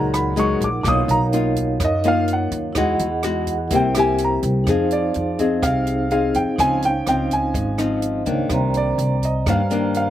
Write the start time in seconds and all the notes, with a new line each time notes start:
Already playing: C#2 A#2 F#3 G#3 D#4 G#4 A#4 F#5 A#5
0.14 B5, cross-stick, closed hi-hat
0.36 F#3 G#3 D#4 C#6, closed hi-hat
0.61 A#1 D6, kick, closed hi-hat
0.81 B1 B2 D#4 A#4 C#5 D6, kick, cross-stick, closed hi-hat
0.85 A#3 D#4 F4 F5 D#6
1.08 B1 A#5, closed hi-hat
1.32 A#3 D#4 F4, closed hi-hat
1.56 kick, closed hi-hat
1.80 F#2, kick, cross-stick, closed hi-hat
1.85 D#5
2.04 A#3 D#4 F4, closed hi-hat
2.08 F5
2.28 closed hi-hat
2.33 F#5
2.51 D#2, kick, closed hi-hat
2.73 E2 E3 G#3 E4 G#4 D#5, kick, cross-stick, closed hi-hat
2.77 D#4 F#4 F#5
2.99 E2, closed hi-hat
3.23 G#3 D#4 F#4, cross-stick, closed hi-hat
3.47 kick, closed hi-hat
3.68 C2 C3 E4 A#4 C5, kick, closed hi-hat
3.72 A#3 E4 G4 G5
3.95 A#3 E4 G4, cross-stick, closed hi-hat
3.99 G#5
4.18 closed hi-hat
4.25 A#5
4.43 C2, kick, closed hi-hat
4.64 F2 F3 C4 D#4 G#4 C5, kick, cross-stick, closed hi-hat
4.68 D#4 G#4 F5
4.91 D5, closed hi-hat
5.14 F2, closed hi-hat
5.39 C4 D#4 G#4 D#5, kick, closed hi-hat
5.62 C2 C3 F5, kick, cross-stick, closed hi-hat
5.85 D#4 G#4 C5 F5, closed hi-hat
6.10 C4 D#4 G#4 F5, closed hi-hat
6.34 F2 G5, kick, closed hi-hat
6.56 C#2 C#3 F3 C4 D#4 C5, kick, cross-stick, closed hi-hat
6.60 C#4 F5 G#5
6.82 G5, closed hi-hat
7.07 C#2 F3 C4 D#4 G5, cross-stick, closed hi-hat
7.30 G#5, kick, closed hi-hat
7.54 G#1 G#2, kick, closed hi-hat
7.78 F3 C4 D#4, cross-stick, closed hi-hat
8.02 closed hi-hat
8.25 C#2 D#3 A#3 D4 D#4 C5 C#5 F5, kick, closed hi-hat
8.49 C2 C3 C5 D5, kick, cross-stick, closed hi-hat
8.54 A#5
8.74 D5, closed hi-hat
8.98 C2, closed hi-hat
9.22 D#5, kick, closed hi-hat
9.46 G2 D#3 A#3 D4 F5, kick, cross-stick, closed hi-hat
9.69 D#3 A#3 D4 C5 D5 A#5, closed hi-hat
9.94 F5, closed hi-hat